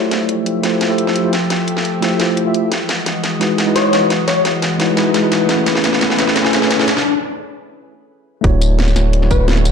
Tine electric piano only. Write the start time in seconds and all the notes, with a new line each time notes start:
Already playing: A3 E4 F4 G4 C5
0.62 A3 E4 F4 G4 C5
0.89 A3 E4 F4 G4 C5
1.23 A3 E4 F4 G4 C5
2.01 A3 E4 F4 G4 C5
2.18 A3 E4 F4 G4 C5
2.45 A3 E4 F4 G4 E5
3.40 G#3 D#4 E4 F#4 B4
3.66 G#3 D#4 E4 F#4 B4
4.01 G#3 D#4 E4 F#4 B4
4.78 G#3 D#4 E4 F#4 B4
4.96 G#3 D#4 E4 F#4 B4
5.22 G#3 D#4 E4 F#4 B4
5.47 A3 C#4 E4 G#4
5.52 B4
6.17 A3 C#4 E4 G#4 B4
6.43 A3 C#4 E4 G#4 B4
6.78 A3 C#4 E4 G#4 B4
8.41 A3 D4 E4 F#4
8.47 C#5
8.95 A3 D4 E4 F#4 C#5
9.21 A3 D4 E4 F#4 C#5
9.56 A3 D4 E4 F#4 C#5